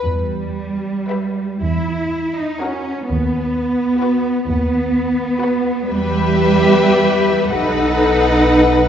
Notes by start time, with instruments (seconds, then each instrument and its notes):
0.02 double bass section E2, cello section G3
1.09 viola section G4, violin section B4 E5
1.63 double bass section E2, cello section E4
2.38 cello section D#4
2.61 cello section C#4, viola section F#4, violin section A#4 F#5
3.08 double bass section D#2, cello section B3
4.00 viola section F#4, violin section B4 F#5
4.46 double bass section D#2, cello section B3
5.41 viola section F#4, violin section B4 F#5
5.89 double bass section E2, cello section G3, viola section G4, violin section B4 E5
7.51 double bass section B1, cello section D#4, viola section A4, violin section B4 F#5